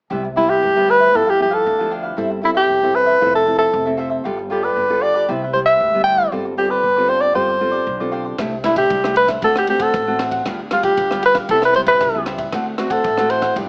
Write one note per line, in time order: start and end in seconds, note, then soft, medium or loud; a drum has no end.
0.10 0.54 C2 medium
0.10 0.60 C3 medium
0.10 0.26 G3 medium
0.10 0.26 B3 soft
0.10 0.26 E4 medium
0.10 0.22 G4 medium
0.10 0.23 B4 medium
0.10 0.23 C5 medium
0.10 0.23 E5 medium
0.24 muted cavaquinho stroke soft
0.36 0.61 G3 medium
0.36 0.61 B3 medium
0.36 0.51 E4 medium
0.36 0.61 E4 medium
0.36 0.48 G4 soft
0.36 0.48 B4 medium
0.36 0.48 C5 soft
0.36 0.47 E5 medium
0.48 0.92 G4 medium
0.48 0.74 B4 medium
0.48 0.75 C5 medium
0.48 0.74 E5 medium
0.63 1.06 D2 medium
0.63 1.12 G2 medium
0.76 1.10 G3 medium
0.76 1.11 B3 medium
0.76 1.11 E4 medium
0.76 0.88 B4 soft
0.76 0.87 C5 soft
0.76 0.88 E5 soft
0.88 1.00 G4 soft
0.88 1.00 B4 medium
0.88 1.18 B4 loud
0.88 1.00 C5 soft
0.88 0.99 E5 medium
1.00 1.13 B4 medium
1.00 1.13 C5 medium
1.00 1.12 E5 medium
1.14 1.59 G1 medium
1.14 1.63 G2 soft
1.14 1.36 F3 soft
1.14 1.36 B3 medium
1.14 1.26 D4 medium
1.14 1.36 E4 medium
1.14 1.26 G4 medium
1.14 1.31 A4 medium
1.14 1.26 B4 medium
1.14 1.25 F5 medium
1.26 1.38 G4 soft
1.26 1.42 G4 medium
1.26 1.38 B4 soft
1.26 1.38 F5 soft
1.38 1.64 F3 soft
1.38 1.64 B3 medium
1.38 1.64 E4 medium
1.38 muted cavaquinho stroke soft
1.42 1.55 G4 medium
1.51 1.78 G4 medium
1.51 1.92 A4 medium
1.51 1.77 B4 medium
1.51 1.77 F5 medium
1.66 2.10 D2 medium
1.66 2.15 D3 medium
1.78 2.14 F3 medium
1.78 2.14 B3 medium
1.78 2.14 E4 medium
1.78 1.90 G4 soft
1.78 1.90 B4 soft
1.78 1.90 F5 soft
1.90 2.03 D4 medium
1.90 2.03 G4 medium
1.90 2.03 B4 medium
1.90 2.02 F5 medium
2.03 2.17 G4 soft
2.03 2.16 B4 soft
2.03 2.16 F5 soft
2.17 2.62 G1 medium
2.17 2.67 G3 medium
2.17 2.39 C4 medium
2.17 2.29 E4 medium
2.17 2.39 E4 medium
2.17 2.29 A4 medium
2.17 2.39 A4 medium
2.17 2.30 C5 medium
2.17 2.30 E5 medium
2.30 muted cavaquinho stroke soft
2.42 2.78 C4 medium
2.42 2.54 E4 soft
2.42 2.78 E4 medium
2.42 2.50 E4 medium
2.42 2.55 A4 soft
2.42 2.78 A4 medium
2.42 2.55 C5 soft
2.42 2.53 E5 medium
2.55 2.97 G4 medium
2.55 2.82 A4 medium
2.55 2.81 C5 medium
2.55 2.80 E5 medium
2.69 3.14 E1 medium
2.69 3.18 G3 soft
2.82 3.17 C4 medium
2.82 3.17 E4 medium
2.82 3.18 A4 medium
2.82 2.94 A4 soft
2.82 2.94 C5 soft
2.82 2.95 E5 soft
2.94 3.07 E4 soft
2.94 3.07 A4 soft
2.94 3.34 B4 loud
2.94 3.06 C5 medium
2.94 3.05 E5 medium
3.06 3.20 A4 medium
3.06 3.20 C5 medium
3.06 3.19 E5 medium
3.21 3.66 F1 medium
3.21 3.71 F3 soft
3.21 3.43 C4 medium
3.21 3.43 E4 soft
3.21 3.33 F4 medium
3.21 3.33 A4 medium
3.21 3.43 A4 medium
3.21 3.34 C5 medium
3.21 3.33 E5 medium
3.34 3.58 A4 medium
3.34 3.45 A4 soft
3.34 3.46 C5 soft
3.34 3.46 E5 soft
3.46 3.71 C4 soft
3.46 3.71 E4 soft
3.46 3.72 A4 medium
3.46 muted cavaquinho stroke soft
3.58 3.95 A4 medium
3.58 3.85 A4 medium
3.58 3.84 C5 medium
3.58 3.84 E5 medium
3.73 4.17 F1 medium
3.73 4.22 C3 medium
3.86 4.21 C4 medium
3.86 4.21 E4 medium
3.86 4.21 A4 medium
3.86 3.97 A4 soft
3.86 3.97 C5 soft
3.86 3.98 E5 soft
3.97 4.10 F4 medium
3.97 4.10 A4 medium
3.97 4.09 C5 medium
3.97 4.08 E5 medium
4.10 4.24 A4 soft
4.10 4.23 C5 soft
4.10 4.23 E5 soft
4.24 4.69 G1 medium
4.24 4.74 G3 medium
4.24 4.40 B3 medium
4.24 4.36 F4 medium
4.24 4.40 F4 medium
4.24 4.37 G4 medium
4.24 4.40 A4 medium
4.24 4.37 B4 medium
4.24 4.37 D5 medium
4.38 muted cavaquinho stroke soft
4.50 4.85 B3 medium
4.50 4.62 F4 soft
4.50 4.85 F4 medium
4.50 4.62 G4 soft
4.50 4.66 G4 medium
4.50 4.85 A4 medium
4.50 4.62 B4 soft
4.50 4.62 D5 medium
4.63 4.89 G4 medium
4.63 4.89 B4 medium
4.63 5.04 B4 medium
4.63 4.88 D5 medium
4.76 5.21 G1 medium
4.76 5.26 D3 medium
4.89 5.24 B3 medium
4.89 5.24 F4 medium
4.89 5.01 G4 soft
4.89 5.25 A4 medium
4.89 5.01 B4 soft
4.89 5.01 D5 soft
5.01 5.14 F4 soft
5.01 5.14 G4 soft
5.01 5.14 B4 medium
5.01 5.28 D5 medium
5.01 5.13 D5 soft
5.14 5.27 G4 medium
5.14 5.27 B4 medium
5.14 5.27 D5 medium
5.28 5.72 C2 medium
5.28 5.78 C3 medium
5.28 5.44 G3 medium
5.28 5.44 B3 medium
5.28 5.44 E4 medium
5.28 5.40 G4 medium
5.28 5.41 B4 medium
5.28 5.41 C5 medium
5.28 5.41 E5 medium
5.42 5.53 B4 soft
5.42 5.53 C5 soft
5.42 5.53 E5 soft
5.53 5.88 G3 medium
5.53 5.89 B3 medium
5.53 5.89 E4 medium
5.53 5.60 C5 medium
5.53 muted cavaquinho stroke soft
5.66 5.92 B4 medium
5.66 5.92 C5 medium
5.66 5.91 E5 medium
5.66 6.03 E5 medium
5.80 6.24 D2 medium
5.80 6.29 G2 medium
5.93 6.28 G3 medium
5.93 6.28 B3 medium
5.93 6.29 E4 medium
5.93 6.05 B4 soft
5.93 6.04 C5 soft
5.93 6.05 E5 soft
6.04 6.17 G4 medium
6.04 6.17 B4 medium
6.04 6.17 C5 medium
6.04 6.16 E5 medium
6.04 6.29 G5 medium
6.18 6.31 B4 soft
6.18 6.31 C5 soft
6.18 6.30 E5 soft
6.32 6.76 G1 medium
6.32 6.81 G3 medium
6.32 6.54 C4 medium
6.32 6.44 F4 medium
6.32 6.54 F4 medium
6.32 6.44 G4 medium
6.32 6.54 A4 medium
6.32 6.44 C5 medium
6.32 6.45 D5 medium
6.45 muted cavaquinho stroke soft
6.57 6.82 C4 medium
6.57 6.69 F4 soft
6.57 6.82 F4 soft
6.57 6.70 G4 soft
6.57 6.72 G4 medium
6.57 6.82 A4 medium
6.57 6.70 C5 medium
6.57 6.68 D5 medium
6.69 6.96 G4 medium
6.69 7.11 B4 medium
6.69 6.96 C5 medium
6.69 6.95 D5 medium
6.83 7.28 G1 medium
6.83 7.33 D3 medium
6.96 7.32 C4 medium
6.96 7.32 F4 medium
6.96 7.08 G4 soft
6.96 7.32 A4 medium
6.96 7.08 C5 soft
6.96 7.08 D5 soft
7.08 7.21 F4 soft
7.08 7.21 G4 soft
7.08 7.21 C5 medium
7.08 7.23 C5 loud
7.08 7.19 D5 medium
7.21 7.33 G4 medium
7.21 7.34 C5 medium
7.21 7.33 D5 medium
7.21 7.35 D5 medium
7.34 7.79 G1 medium
7.34 7.84 G3 medium
7.34 7.57 C4 soft
7.34 7.46 F4 medium
7.34 7.57 F4 medium
7.34 7.47 G4 medium
7.34 7.57 A4 medium
7.34 7.47 C5 medium
7.34 8.09 C5 medium
7.34 7.47 D5 medium
7.48 7.59 G4 soft
7.48 7.60 C5 soft
7.48 7.60 D5 soft
7.60 7.85 C4 medium
7.60 7.85 F4 medium
7.60 7.86 A4 medium
7.60 muted cavaquinho stroke soft
7.72 7.99 G4 soft
7.72 7.98 C5 medium
7.72 7.98 D5 medium
7.87 8.31 B1 medium
7.87 8.36 D3 medium
8.00 8.35 C4 medium
8.00 8.35 F4 medium
8.00 8.11 G4 soft
8.00 8.35 A4 medium
8.00 8.11 C5 soft
8.00 8.12 D5 medium
8.12 8.24 F4 medium
8.12 8.24 G4 medium
8.12 8.24 C5 medium
8.12 8.23 D5 medium
8.24 8.38 G4 soft
8.24 8.38 C5 soft
8.24 8.37 D5 soft
8.38 8.83 C2 medium
8.38 8.88 C3 medium
8.38 8.54 A3 medium
8.38 8.54 D4 medium
8.38 8.51 E4 medium
8.38 8.54 E4 medium
8.38 8.51 A4 medium
8.38 8.51 C5 medium
8.38 8.52 E5 medium
8.38 kick medium
8.38 cross-stick medium
8.38 ride soft
8.53 muted cavaquinho stroke soft
8.64 8.99 A3 soft
8.64 8.99 D4 medium
8.64 8.76 E4 soft
8.64 8.99 E4 medium
8.64 8.77 E4 medium
8.64 8.77 A4 soft
8.64 8.76 C5 medium
8.64 8.75 E5 soft
8.64 cross-stick medium
8.64 ride soft
8.76 9.14 G4 medium
8.76 9.03 A4 medium
8.76 9.02 C5 medium
8.76 9.02 E5 medium
8.76 kick medium
8.76 ride soft
8.90 9.35 C2 medium
8.90 9.40 G3 medium
8.90 kick medium
8.90 ride soft
9.03 9.39 A3 medium
9.03 9.39 D4 medium
9.03 9.39 E4 medium
9.03 9.14 A4 soft
9.03 9.15 C5 soft
9.03 9.15 E5 soft
9.03 cross-stick medium
9.15 9.28 E4 soft
9.15 9.28 A4 soft
9.15 9.29 B4 medium
9.15 9.28 C5 soft
9.15 9.27 E5 medium
9.15 ride soft
9.28 9.41 A4 medium
9.28 9.41 C5 medium
9.28 9.40 E5 medium
9.28 kick medium
9.28 cross-stick medium
9.28 ride soft
9.41 9.86 D2 medium
9.41 9.92 D3 soft
9.41 9.64 A3 medium
9.41 9.64 C4 soft
9.41 9.54 D4 medium
9.41 9.65 F#4 medium
9.41 9.54 A4 medium
9.41 9.55 A4 medium
9.41 9.54 C5 medium
9.41 9.54 F#5 medium
9.41 kick medium
9.41 ride soft
9.55 9.69 G4 medium
9.55 9.66 A4 soft
9.55 9.67 C5 soft
9.55 9.67 F#5 soft
9.55 cross-stick medium
9.67 10.02 A3 soft
9.67 10.03 C4 soft
9.67 10.03 F#4 medium
9.67 9.84 G4 medium
9.67 muted cavaquinho stroke soft
9.67 ride soft
9.80 10.06 A4 medium
9.80 10.20 A4 medium
9.80 10.06 C5 medium
9.80 10.05 F#5 medium
9.80 kick medium
9.80 ride soft
9.93 10.38 A1 medium
9.93 10.43 A2 medium
9.93 kick medium
9.93 cross-stick medium
9.93 ride soft
10.07 10.42 A3 medium
10.07 10.42 C4 medium
10.07 10.42 F#4 medium
10.07 10.18 A4 soft
10.07 10.19 C5 soft
10.07 10.19 F#5 soft
10.19 10.31 D4 medium
10.19 10.32 A4 medium
10.19 10.31 C5 medium
10.19 10.30 F#5 medium
10.19 cross-stick medium
10.19 ride soft
10.31 10.45 A4 soft
10.31 10.44 C5 soft
10.31 10.44 F#5 soft
10.31 kick medium
10.31 ride soft
10.45 10.90 D2 medium
10.45 10.95 D3 medium
10.45 10.61 G3 medium
10.45 10.61 B3 medium
10.45 10.58 D4 medium
10.45 10.61 F4 medium
10.45 10.58 G4 medium
10.45 10.58 B4 medium
10.45 10.58 F5 medium
10.45 kick medium
10.45 cross-stick medium
10.45 ride soft
10.59 muted cavaquinho stroke soft
10.71 11.06 G3 medium
10.71 11.06 B3 medium
10.71 10.83 D4 soft
10.71 11.06 F4 medium
10.71 10.84 F4 medium
10.71 10.84 G4 soft
10.71 10.83 B4 medium
10.71 10.82 F5 soft
10.71 cross-stick medium
10.71 ride soft
10.83 11.21 G4 medium
10.83 11.10 G4 medium
10.83 11.09 B4 medium
10.83 11.09 F5 medium
10.83 kick medium
10.83 ride soft
10.97 11.42 D2 medium
10.97 11.47 D3 medium
10.97 kick medium
10.97 ride soft
11.10 11.46 G3 medium
11.10 11.46 B3 medium
11.10 11.46 F4 medium
11.10 11.22 G4 soft
11.10 11.22 B4 soft
11.10 11.22 F5 soft
11.10 cross-stick medium
11.22 11.35 D4 soft
11.22 11.35 G4 soft
11.22 11.34 B4 medium
11.22 11.37 B4 medium
11.22 11.33 F5 medium
11.22 ride soft
11.35 11.47 G4 medium
11.35 11.48 B4 medium
11.35 11.47 F5 medium
11.35 kick medium
11.35 cross-stick medium
11.35 ride soft
11.48 11.93 C2 medium
11.48 11.99 C3 soft
11.48 11.65 G3 medium
11.48 11.65 B3 medium
11.48 11.65 E4 medium
11.48 11.60 G4 medium
11.48 11.62 A4 medium
11.48 11.61 B4 medium
11.48 11.61 C5 medium
11.48 11.60 E5 medium
11.48 kick medium
11.48 ride soft
11.61 11.73 B4 soft
11.61 11.75 B4 medium
11.61 11.73 C5 soft
11.61 11.74 E5 soft
11.61 cross-stick medium
11.74 12.10 G3 soft
11.74 12.10 B3 soft
11.74 12.10 E4 medium
11.74 11.81 C5 medium
11.74 muted cavaquinho stroke soft
11.74 ride soft
11.87 12.13 B4 medium
11.87 12.24 B4 medium
11.87 12.12 E5 medium
11.87 kick medium
11.87 ride soft
12.01 12.45 C#2 medium
12.01 12.50 G2 medium
12.01 kick medium
12.01 cross-stick medium
12.01 ride soft
12.14 12.49 G3 medium
12.14 12.49 B3 medium
12.14 12.49 E4 medium
12.14 12.25 B4 soft
12.14 12.25 C5 soft
12.14 12.26 E5 soft
12.26 12.38 G4 medium
12.26 12.38 B4 medium
12.26 12.39 C5 medium
12.26 12.37 E5 medium
12.26 cross-stick medium
12.26 ride soft
12.38 12.51 B4 soft
12.38 12.52 C5 soft
12.38 12.51 E5 soft
12.38 kick medium
12.38 ride soft
12.52 12.97 D2 medium
12.52 13.02 D3 medium
12.52 12.74 A3 medium
12.52 12.74 C4 medium
12.52 12.64 D4 medium
12.52 12.75 F#4 medium
12.52 12.65 A4 medium
12.52 12.65 C5 medium
12.52 12.65 F#5 medium
12.52 kick medium
12.52 cross-stick medium
12.52 ride soft
12.66 muted cavaquinho stroke soft
12.78 13.03 A3 medium
12.78 13.03 C4 medium
12.78 12.90 D4 soft
12.78 12.93 F#4 medium
12.78 13.03 F#4 medium
12.78 12.90 A4 medium
12.78 12.90 C5 medium
12.78 12.89 F#5 soft
12.78 cross-stick medium
12.78 ride soft
12.90 13.32 A4 medium
12.90 13.17 A4 medium
12.90 13.16 C5 medium
12.90 13.16 F#5 medium
12.90 kick medium
12.90 ride soft
13.04 13.48 A1 medium
13.04 13.54 A2 medium
13.04 kick medium
13.04 ride soft
13.18 13.53 A3 medium
13.18 13.53 C4 medium
13.18 13.53 F#4 medium
13.18 13.29 A4 soft
13.18 13.30 C5 soft
13.18 13.29 F#5 soft
13.18 cross-stick medium
13.30 13.42 D4 soft
13.30 13.42 A4 soft
13.30 13.56 C5 medium
13.30 13.41 C5 medium
13.30 13.40 F#5 medium
13.30 ride soft
13.41 13.55 A4 medium
13.41 13.55 C5 medium
13.41 13.54 F#5 medium
13.41 kick medium
13.41 cross-stick medium
13.41 ride soft
13.56 13.69 G1 medium
13.56 13.69 G2 medium
13.56 13.69 F3 medium
13.56 13.69 B3 soft
13.56 13.69 D4 medium
13.56 13.68 F4 medium
13.56 13.68 G4 medium
13.56 13.68 B4 medium
13.56 13.67 D5 medium
13.56 kick medium
13.56 ride soft